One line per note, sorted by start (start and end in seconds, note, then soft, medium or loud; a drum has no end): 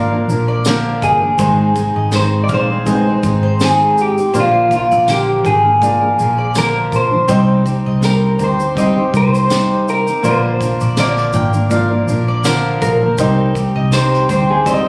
0.00 0.24 G#1 medium
0.00 0.12 F3 medium
0.00 0.12 A#3 medium
0.00 1.41 A#3 medium
0.00 0.12 D4 medium
0.00 1.41 F4 medium
0.00 0.11 A#4 medium
0.00 1.03 A#4 medium
0.00 1.41 D5 medium
0.00 0.10 F5 medium
0.12 0.27 F3 soft
0.12 0.28 A#3 soft
0.12 0.29 D4 soft
0.12 0.28 A#4 soft
0.28 0.98 A#1 medium
0.28 0.65 F3 medium
0.28 0.66 A#3 medium
0.28 0.66 D4 medium
0.28 0.67 A#4 medium
0.28 shaker soft
0.48 0.83 D5 medium
0.65 1.23 A#2 medium
0.65 1.23 D3 medium
0.65 1.23 F3 medium
0.65 1.23 A#3 medium
0.65 1.21 D4 loud
0.65 1.20 A#4 medium
0.65 snare loud
0.65 tambourine medium
0.65 shaker medium
1.02 1.36 G1 medium
1.02 2.15 G#4 medium
1.02 kick medium
1.02 shaker soft
1.21 1.39 F3 soft
1.21 1.39 A#3 soft
1.21 1.39 D4 soft
1.21 1.38 A#4 soft
1.38 1.92 G#1 medium
1.38 1.75 G#2 medium
1.38 1.75 D#3 medium
1.38 2.31 G#3 medium
1.38 1.73 G#3 medium
1.38 1.74 C4 medium
1.38 2.31 D#4 medium
1.38 1.75 D#4 medium
1.38 1.76 G#4 medium
1.38 1.74 C5 medium
1.38 2.32 C5 medium
1.38 kick loud
1.38 shaker medium
1.74 2.11 G#3 medium
1.74 2.12 C4 soft
1.74 2.12 D#4 medium
1.74 2.13 G#4 medium
1.74 kick medium
1.74 shaker medium
1.96 2.45 G#1 medium
1.96 2.12 D#5 medium
2.11 2.49 G#2 medium
2.11 2.49 D#3 medium
2.11 2.48 G#3 medium
2.11 2.49 C4 medium
2.11 2.50 D#4 medium
2.11 2.50 G#4 medium
2.11 2.23 C5 medium
2.11 snare medium
2.11 tambourine medium
2.11 shaker medium
2.44 2.50 D5 medium
2.49 3.19 A#1 medium
2.49 2.70 G#3 medium
2.49 2.70 C4 medium
2.49 2.70 D#4 medium
2.49 2.69 G#4 medium
2.49 2.86 F5 medium
2.49 kick medium
2.49 shaker soft
2.54 3.64 C5 medium
2.70 2.85 G#3 soft
2.70 2.86 C4 soft
2.70 2.87 D#4 soft
2.70 2.87 G#4 soft
2.85 3.78 G#3 medium
2.85 3.06 G#3 medium
2.85 3.07 C4 medium
2.85 3.79 D#4 medium
2.85 3.07 D#4 medium
2.85 3.06 G#4 medium
2.85 2.94 B4 medium
2.85 3.06 D#5 medium
2.85 kick medium
2.85 shaker medium
2.95 3.83 C5 medium
3.07 3.22 G#3 soft
3.07 3.24 C4 soft
3.07 3.24 D#4 soft
3.07 3.23 G#4 soft
3.23 3.93 G#1 medium
3.23 3.60 G#3 medium
3.23 3.61 C4 medium
3.23 3.61 D#4 medium
3.23 kick medium
3.23 shaker soft
3.27 3.62 G#4 medium
3.43 3.78 C5 medium
3.60 4.17 G#2 medium
3.60 4.18 D#3 medium
3.60 4.18 G#3 medium
3.60 4.18 C4 medium
3.60 4.18 D#4 medium
3.60 4.16 G#4 medium
3.60 snare loud
3.60 tambourine medium
3.60 shaker medium
3.64 3.97 G#4 medium
3.98 4.37 G4 medium
3.98 shaker soft
4.17 4.33 G#3 soft
4.17 4.34 C4 soft
4.17 4.35 D#4 soft
4.17 4.34 G#4 soft
4.17 shaker soft
4.33 4.87 A#1 medium
4.33 4.70 A#2 medium
4.33 4.71 D3 medium
4.33 4.69 F3 medium
4.33 5.26 A#3 medium
4.33 4.70 A#3 medium
4.33 4.71 D4 medium
4.33 5.26 F4 medium
4.33 4.71 A#4 medium
4.33 4.69 C5 medium
4.33 5.27 D5 medium
4.33 shaker medium
4.40 4.75 F4 medium
4.70 5.07 F3 soft
4.70 5.07 A#3 medium
4.70 5.07 D4 medium
4.70 5.08 A#4 medium
4.70 kick medium
4.70 shaker medium
4.76 5.10 F4 medium
4.91 5.41 A#1 medium
4.91 5.07 D5 medium
4.91 shaker soft
5.06 5.44 A#2 medium
5.06 5.44 D3 medium
5.06 5.42 F3 medium
5.06 5.43 A#3 medium
5.06 5.44 D4 medium
5.06 5.45 A#4 medium
5.06 snare medium
5.06 tambourine medium
5.06 shaker medium
5.11 5.46 G4 medium
5.43 6.14 G#1 medium
5.43 5.64 F3 medium
5.43 5.65 A#3 medium
5.43 5.63 D4 medium
5.43 6.58 G#4 medium
5.43 5.62 A#4 medium
5.43 5.81 G5 medium
5.43 kick medium
5.43 shaker soft
5.63 5.79 F3 soft
5.63 5.80 A#3 soft
5.63 5.81 D4 soft
5.63 5.81 A#4 soft
5.80 6.01 F3 medium
5.80 6.73 A#3 medium
5.80 6.02 A#3 medium
5.80 6.01 D4 medium
5.80 6.74 F4 medium
5.80 5.99 A#4 medium
5.80 6.74 D5 medium
5.80 6.01 F5 medium
5.80 kick medium
5.80 shaker medium
6.01 6.17 F3 soft
6.01 6.18 A#3 soft
6.01 6.19 D4 soft
6.01 6.18 A#4 soft
6.19 6.89 A#1 medium
6.19 6.55 F3 soft
6.19 6.55 A#3 medium
6.19 6.55 D4 medium
6.19 6.56 A#4 medium
6.19 shaker soft
6.38 6.73 D5 medium
6.55 7.12 A#2 medium
6.55 7.12 D3 medium
6.55 7.13 F3 medium
6.55 7.12 A#3 medium
6.55 7.11 D4 medium
6.55 7.10 A#4 medium
6.55 6.95 A#4 medium
6.55 snare loud
6.55 tambourine medium
6.55 shaker medium
6.92 7.26 A#1 medium
6.92 8.04 C5 medium
6.92 kick medium
6.92 shaker soft
7.11 7.28 F3 soft
7.11 7.29 A#3 soft
7.11 7.29 D4 soft
7.11 7.28 A#4 soft
7.27 7.82 C2 medium
7.27 7.65 C3 medium
7.27 7.63 G3 medium
7.27 8.20 C4 medium
7.27 7.64 C4 medium
7.27 7.66 D#4 medium
7.27 8.21 G4 medium
7.27 7.66 G4 medium
7.27 7.64 C5 medium
7.27 8.22 D#5 medium
7.27 kick loud
7.27 shaker medium
7.64 8.00 G3 medium
7.64 8.01 C4 soft
7.64 8.02 D#4 medium
7.64 8.02 G4 medium
7.64 kick medium
7.64 shaker medium
7.86 8.36 C2 medium
7.86 8.02 D#5 medium
8.01 8.38 C3 medium
8.01 8.36 G3 medium
8.01 8.37 C4 medium
8.01 8.38 D#4 medium
8.01 8.40 G4 medium
8.01 snare medium
8.01 tambourine medium
8.01 shaker medium
8.05 8.42 A#4 medium
8.38 9.09 D2 medium
8.38 8.59 G3 soft
8.38 8.59 C4 medium
8.38 8.59 D#4 medium
8.38 8.57 G4 medium
8.38 8.75 G5 medium
8.38 kick medium
8.38 shaker medium
8.44 9.16 C5 medium
8.58 8.75 C4 soft
8.58 8.76 D#4 soft
8.58 8.75 G4 soft
8.58 shaker soft
8.75 8.96 G3 medium
8.75 9.68 C4 medium
8.75 8.96 C4 medium
8.75 8.96 D#4 medium
8.75 9.69 G4 medium
8.75 8.94 G4 medium
8.75 8.96 D#5 medium
8.75 9.69 D#5 medium
8.75 kick medium
8.75 shaker medium
8.95 9.12 C4 soft
8.95 9.13 D#4 soft
8.95 9.13 G4 medium
9.12 9.83 C2 medium
9.12 9.48 G3 medium
9.12 9.48 C4 medium
9.12 9.48 D#4 medium
9.12 kick medium
9.12 shaker medium
9.16 9.50 G4 medium
9.16 9.89 C5 medium
9.34 9.69 C5 medium
9.34 shaker soft
9.48 10.06 C3 medium
9.48 10.07 G3 medium
9.48 10.07 C4 medium
9.48 10.07 D#4 medium
9.48 10.05 G4 medium
9.48 snare loud
9.48 tambourine medium
9.48 shaker medium
9.88 10.23 A#4 medium
9.88 shaker soft
10.06 10.23 C4 soft
10.06 10.23 D#4 soft
10.06 10.23 G4 medium
10.06 shaker soft
10.22 10.77 A#1 medium
10.22 10.60 A#2 medium
10.22 10.60 D3 medium
10.22 10.59 F3 medium
10.22 11.15 A#3 medium
10.22 10.60 A#3 medium
10.22 10.61 D4 medium
10.22 11.16 F4 medium
10.22 10.61 A#4 medium
10.22 10.59 C5 medium
10.22 11.00 C5 medium
10.22 11.16 D5 medium
10.22 shaker medium
10.60 10.97 F3 soft
10.60 10.97 A#3 medium
10.60 10.98 D4 medium
10.60 10.98 A#4 medium
10.60 kick medium
10.60 shaker medium
10.81 11.31 A#1 medium
10.81 10.97 D5 medium
10.81 shaker soft
10.97 11.34 A#2 medium
10.97 11.35 D3 medium
10.97 11.32 F3 medium
10.97 11.32 A#3 medium
10.97 11.34 D4 medium
10.97 11.35 A#4 medium
10.97 12.89 D5 loud
10.97 snare medium
10.97 tambourine medium
10.97 shaker medium
11.17 snare soft
11.33 12.04 G#1 medium
11.33 11.54 F3 medium
11.33 11.54 A#3 medium
11.33 11.53 D4 medium
11.33 11.52 A#4 medium
11.33 11.70 G5 medium
11.33 kick medium
11.33 shaker soft
11.53 11.68 F3 soft
11.53 11.69 A#3 soft
11.53 11.70 D4 soft
11.53 11.71 A#4 medium
11.53 shaker soft
11.69 11.91 F3 medium
11.69 12.62 A#3 medium
11.69 11.91 A#3 medium
11.69 11.90 D4 medium
11.69 12.63 F4 medium
11.69 11.89 A#4 medium
11.69 12.63 D5 medium
11.69 11.90 F5 medium
11.69 kick medium
11.69 shaker medium
11.90 12.05 F3 soft
11.90 12.07 A#3 soft
11.90 12.08 D4 medium
11.90 12.08 A#4 medium
12.07 12.78 A#1 medium
12.07 12.44 F3 medium
12.07 12.44 A#3 medium
12.07 12.44 D4 medium
12.07 12.44 A#4 medium
12.07 shaker soft
12.28 12.63 D5 medium
12.44 13.02 A#2 medium
12.44 13.02 D3 medium
12.44 13.02 F3 medium
12.44 13.02 A#3 medium
12.44 13.01 D4 medium
12.44 13.00 A#4 medium
12.44 snare loud
12.44 tambourine medium
12.44 shaker medium
12.82 13.16 A#1 medium
12.82 13.52 A#4 medium
12.82 kick medium
12.82 shaker soft
13.01 13.18 F3 soft
13.01 13.18 A#3 soft
13.01 13.19 D4 soft
13.01 13.18 A#4 medium
13.18 13.72 C2 medium
13.18 13.55 C3 medium
13.18 13.53 G3 medium
13.18 14.11 C4 medium
13.18 13.54 C4 medium
13.18 13.55 D#4 medium
13.18 14.11 G4 medium
13.18 13.56 G4 medium
13.18 13.54 C5 medium
13.18 14.12 D#5 medium
13.18 kick loud
13.18 shaker medium
13.54 13.90 G3 medium
13.54 13.91 C4 medium
13.54 13.92 D#4 medium
13.54 13.93 G4 medium
13.54 kick medium
13.54 shaker medium
13.75 14.25 C2 medium
13.75 13.92 D#5 medium
13.91 14.29 C3 medium
13.91 14.26 G3 medium
13.91 14.28 C4 medium
13.91 14.29 D#4 medium
13.91 14.30 G4 medium
13.91 14.27 C5 medium
13.91 snare medium
13.91 tambourine medium
13.91 shaker medium
14.13 snare soft
14.28 14.88 D2 medium
14.28 14.49 G3 medium
14.28 14.50 C4 medium
14.28 14.49 D#4 medium
14.28 14.47 G4 medium
14.28 14.51 C5 medium
14.28 14.65 G5 medium
14.28 kick medium
14.28 shaker medium
14.48 14.64 C4 soft
14.48 14.65 D#4 soft
14.48 14.66 G4 soft
14.48 14.67 G#4 medium
14.64 14.85 G3 medium
14.64 14.86 C4 medium
14.64 14.88 C4 medium
14.64 14.86 D#4 medium
14.64 14.88 G4 medium
14.64 14.84 G4 medium
14.64 14.77 C5 medium
14.64 14.74 D5 medium
14.64 14.86 D#5 medium
14.64 kick medium
14.64 shaker medium
14.74 14.88 D#5 medium